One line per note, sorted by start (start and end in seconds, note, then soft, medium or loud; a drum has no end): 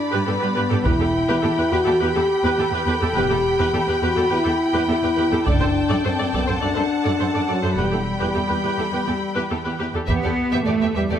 0.00 0.26 D4 medium
0.00 0.85 D5 soft
0.00 0.82 B5 soft
0.12 0.19 G2 medium
0.12 0.19 G4 soft
0.12 0.18 B4 soft
0.26 0.33 G2 soft
0.26 0.84 B3 medium
0.26 0.33 G4 soft
0.26 0.33 A4 soft
0.41 0.48 G2 soft
0.41 0.47 G4 soft
0.41 0.47 B4 soft
0.55 0.62 G2 medium
0.55 0.61 G4 soft
0.55 0.61 B4 soft
0.70 0.76 G2 soft
0.70 0.76 G4 soft
0.70 0.76 A4 soft
0.85 0.99 E1 soft
0.85 0.91 E2 medium
0.85 1.72 E4 medium
0.85 0.91 G4 soft
0.85 0.91 B4 medium
0.85 6.59 G5 soft
0.85 5.43 B5 soft
0.85 taiko soft
1.00 1.05 E2 soft
1.00 1.06 G4 soft
1.00 1.06 A4 soft
1.28 1.34 E2 medium
1.28 1.34 G4 medium
1.28 1.35 B4 soft
1.43 1.50 E2 soft
1.43 1.49 G4 soft
1.43 1.49 A4 soft
1.57 1.63 E2 soft
1.57 1.64 G4 soft
1.57 1.64 B4 soft
1.72 1.78 E2 medium
1.72 2.01 F#4 medium
1.72 1.78 G4 medium
1.72 1.78 B4 medium
1.86 1.92 E2 soft
1.86 1.92 G4 soft
1.86 1.92 A4 soft
2.01 2.07 E2 medium
2.01 2.72 G4 medium
2.01 2.07 G4 soft
2.01 2.07 B4 soft
2.16 2.21 E2 soft
2.16 2.22 G4 soft
2.16 2.22 A4 soft
2.44 2.50 E2 medium
2.44 2.51 G4 soft
2.44 2.51 B4 medium
2.58 2.64 E2 soft
2.58 2.65 G4 soft
2.58 2.65 A4 soft
2.72 2.78 E2 soft
2.72 2.79 G4 soft
2.72 2.80 B4 soft
2.86 2.92 E2 medium
2.86 2.93 G4 soft
2.86 3.17 A4 medium
2.86 2.93 B4 soft
3.02 3.08 E2 soft
3.02 3.08 G4 soft
3.02 3.08 A4 soft
3.15 3.30 E1 medium
3.15 3.22 E2 medium
3.15 3.22 G4 medium
3.15 4.01 G4 medium
3.15 3.21 B4 medium
3.30 3.37 E2 soft
3.30 3.36 G4 soft
3.30 3.36 A4 soft
3.59 3.65 E2 medium
3.59 3.65 G4 soft
3.59 3.65 B4 medium
3.74 3.80 E2 soft
3.74 3.79 G4 soft
3.74 3.80 A4 soft
3.88 3.94 E2 soft
3.88 3.94 G4 soft
3.88 3.94 B4 soft
4.02 4.08 E2 soft
4.02 4.31 F#4 medium
4.02 4.09 G4 soft
4.02 4.08 B4 medium
4.16 4.23 E2 soft
4.16 4.22 G4 soft
4.16 4.22 A4 soft
4.30 4.37 E2 medium
4.30 5.45 E4 medium
4.30 4.36 G4 soft
4.30 4.36 B4 soft
4.45 4.52 E2 soft
4.45 4.51 G4 soft
4.45 4.51 A4 soft
4.74 4.80 E2 soft
4.74 4.80 G4 soft
4.74 4.80 B4 soft
4.89 4.94 E2 soft
4.89 4.95 G4 soft
4.89 4.95 A4 soft
5.03 5.09 E2 soft
5.03 5.09 G4 soft
5.03 5.09 B4 soft
5.17 5.23 E2 medium
5.17 5.24 G4 soft
5.17 5.23 B4 soft
5.32 5.38 E2 soft
5.32 5.38 G4 soft
5.32 5.38 A4 soft
5.46 5.60 F#1 soft
5.46 5.52 F#2 medium
5.46 6.04 D4 medium
5.46 5.52 A4 medium
5.46 5.52 D5 medium
5.46 7.74 A5 soft
5.46 taiko soft
5.61 5.67 F#2 soft
5.61 5.67 A4 soft
5.61 5.67 C5 soft
5.89 5.96 F#2 soft
5.89 5.95 A4 soft
5.89 5.95 D5 soft
6.04 6.11 F#2 soft
6.04 6.34 C4 soft
6.04 6.10 A4 soft
6.04 6.10 C5 soft
6.18 6.25 F#2 soft
6.18 6.24 A4 soft
6.18 6.24 D5 soft
6.33 6.40 F#2 soft
6.33 6.48 B3 soft
6.33 6.39 A4 soft
6.33 6.39 D5 soft
6.33 taiko soft
6.47 6.54 F#2 soft
6.47 6.63 C4 soft
6.47 6.53 A4 soft
6.47 6.53 C5 soft
6.61 6.68 F#2 soft
6.61 7.47 D4 soft
6.61 6.67 A4 soft
6.61 6.67 D5 soft
6.61 7.78 F#5 soft
6.75 6.83 F#2 soft
6.75 6.81 A4 soft
6.75 6.81 C5 soft
7.04 7.11 F#2 soft
7.04 7.10 A4 soft
7.04 7.10 D5 soft
7.19 7.26 F#2 soft
7.19 7.26 A4 soft
7.19 7.25 C5 soft
7.34 7.41 F#2 soft
7.34 7.40 A4 soft
7.34 7.40 D5 soft
7.48 7.55 F#2 soft
7.48 7.78 F#3 soft
7.48 7.54 A4 soft
7.48 7.54 D5 soft
7.63 7.69 F#2 soft
7.63 7.69 A4 soft
7.63 7.69 C5 soft
7.77 7.91 E1 soft
7.77 7.84 E2 soft
7.77 9.51 G3 soft
7.77 7.84 G4 soft
7.77 7.83 B4 soft
7.77 9.89 G5 soft
7.77 9.89 B5 soft
7.92 7.99 E2 soft
7.92 7.98 G4 soft
7.92 7.98 A4 soft
8.20 8.27 E2 soft
8.20 8.26 G4 soft
8.20 8.26 B4 soft
8.34 8.41 E2 soft
8.34 8.40 G4 soft
8.34 8.41 A4 soft
8.49 8.55 E2 soft
8.49 8.55 G4 soft
8.49 8.55 B4 soft
8.63 8.70 E2 soft
8.63 8.70 G4 soft
8.63 8.69 B4 soft
8.78 8.84 E2 soft
8.78 8.84 G4 soft
8.78 8.84 A4 soft
8.92 8.98 E2 soft
8.92 8.99 G4 soft
8.92 8.99 B4 soft
9.07 9.13 E2 soft
9.07 9.13 G4 soft
9.07 9.13 A4 soft
9.36 9.42 E2 soft
9.36 9.42 G4 soft
9.36 9.42 B4 soft
9.51 9.57 E2 soft
9.51 9.57 G4 soft
9.51 9.57 A4 soft
9.66 9.72 E2 soft
9.66 9.72 G4 soft
9.66 9.71 B4 soft
9.80 9.86 E2 soft
9.80 9.86 G4 soft
9.80 9.86 B4 soft
9.94 10.00 E2 soft
9.94 10.01 G4 soft
9.94 10.01 A4 soft
10.07 10.14 E2 soft
10.07 10.63 B3 medium
10.07 10.29 B3 soft
10.07 10.29 G4 soft
10.07 10.15 G4 soft
10.07 10.14 B4 soft
10.07 10.13 E5 soft
10.07 taiko soft
10.23 10.29 E2 soft
10.23 10.30 G4 soft
10.23 10.30 A4 soft
10.23 10.29 D5 soft
10.52 10.58 E2 soft
10.52 10.58 G4 soft
10.52 10.58 B4 soft
10.52 10.58 E5 soft
10.66 10.72 E2 soft
10.66 10.95 A3 soft
10.66 10.73 G4 soft
10.66 10.72 A4 soft
10.66 10.72 D5 soft
10.81 10.87 E2 soft
10.81 10.87 G4 soft
10.81 10.87 B4 soft
10.81 10.87 E5 soft
10.96 11.01 E2 soft
10.96 11.10 G3 soft
10.96 11.01 G4 soft
10.96 11.01 B4 soft
10.96 11.02 E5 soft
11.10 11.16 E2 soft
11.10 11.19 A3 soft
11.10 11.16 G4 soft
11.10 11.17 A4 soft
11.10 11.17 D5 soft